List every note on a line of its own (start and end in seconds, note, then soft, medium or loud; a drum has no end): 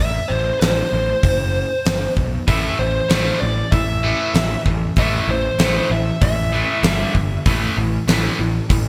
0.00 0.19 A1 medium
0.00 0.31 E5 loud
0.28 0.50 A1 medium
0.28 0.59 C5 medium
0.60 0.81 A1 medium
0.60 2.13 C5 medium
0.60 snare loud
0.60 open hi-hat medium
0.93 1.13 A1 medium
1.23 1.63 F#1 medium
1.23 kick loud
1.23 open hi-hat medium
1.85 2.06 G1 medium
1.85 snare loud
1.85 open hi-hat medium
2.17 2.37 B1 medium
2.17 kick medium
2.47 2.68 A1 medium
2.47 2.77 A2 medium
2.47 2.77 E3 medium
2.47 2.77 A3 loud
2.47 2.77 E5 loud
2.47 kick loud
2.47 open hi-hat medium
2.79 2.99 A1 medium
2.79 3.07 A2 medium
2.79 3.07 E3 medium
2.79 3.08 C5 medium
3.09 3.30 A1 medium
3.09 3.39 A2 medium
3.09 3.40 E3 medium
3.09 3.40 A3 loud
3.09 3.39 C5 medium
3.09 snare loud
3.09 open hi-hat medium
3.40 3.62 A1 medium
3.40 3.70 A2 medium
3.40 3.70 E3 medium
3.40 3.70 D5 medium
3.72 4.12 A1 medium
3.72 4.01 A2 medium
3.72 4.01 E3 medium
3.72 4.62 E5 medium
3.72 kick loud
3.72 open hi-hat soft
4.03 4.33 A2 medium
4.03 4.33 E3 medium
4.03 4.33 A3 medium
4.34 4.55 A1 medium
4.34 4.63 A2 medium
4.34 4.63 E3 medium
4.34 snare loud
4.34 open hi-hat medium
4.66 4.86 A1 medium
4.66 4.94 A2 medium
4.66 4.94 E3 medium
4.66 kick medium
4.96 5.17 A1 medium
4.96 5.26 A2 medium
4.96 5.27 E3 medium
4.96 5.27 A3 medium
4.96 5.30 E5 loud
4.96 kick loud
4.96 open hi-hat medium
5.28 5.48 A1 medium
5.28 5.56 A2 medium
5.28 5.56 E3 medium
5.28 5.60 C5 medium
5.58 5.79 A1 medium
5.58 5.88 A2 medium
5.58 5.88 E3 medium
5.58 5.89 A3 medium
5.58 5.92 C5 medium
5.58 snare loud
5.58 open hi-hat medium
5.90 6.10 A1 medium
5.90 6.18 A2 medium
5.90 6.18 E3 medium
5.90 6.22 E5 loud
6.21 6.62 A1 medium
6.21 6.49 A2 medium
6.21 6.50 E3 medium
6.21 7.12 E5 medium
6.21 kick loud
6.21 open hi-hat medium
6.52 6.82 A2 medium
6.52 6.82 E3 medium
6.52 6.82 A3 medium
6.83 7.03 G1 medium
6.83 7.13 G2 medium
6.83 7.13 D3 medium
6.83 7.13 G3 loud
6.83 snare loud
6.83 open hi-hat medium
7.15 7.35 G1 medium
7.15 7.43 G2 medium
7.15 7.43 D3 medium
7.15 kick medium
7.46 7.66 A1 medium
7.46 7.75 A2 medium
7.46 7.75 E3 medium
7.46 7.76 A3 medium
7.46 kick loud
7.46 open hi-hat medium
7.77 7.97 A1 medium
7.77 8.05 A2 medium
7.77 8.05 E3 medium
8.07 8.28 A1 medium
8.07 8.37 A2 medium
8.07 8.38 E3 medium
8.07 8.38 A3 medium
8.07 snare loud
8.07 open hi-hat medium
8.38 8.59 A1 medium
8.38 8.67 A2 medium
8.38 8.67 E3 medium
8.69 8.88 A1 medium
8.69 8.88 A2 medium
8.69 8.88 E3 medium
8.69 kick loud
8.69 open hi-hat medium